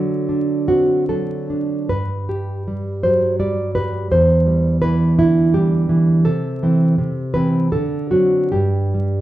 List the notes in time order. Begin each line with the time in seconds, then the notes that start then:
Already playing: D3 F#3 A4
0.29 D4
0.68 C4 F#4
1.09 F#3 A4
1.50 D4
1.89 G2 B4
2.29 G4
2.68 G3
3.03 F#3 C5
3.39 G3 D5
3.75 G4 B4
4.11 E2 C5
4.47 G3
4.82 E3 B4
5.19 D3 E4
5.54 G3 G4
5.89 E3
6.25 C3 A4
6.63 E3 C4
6.98 C3
7.34 E3 C4 B4
7.72 D3 A4
8.11 F#3 C4 F#4
8.52 G2 G4
8.94 G3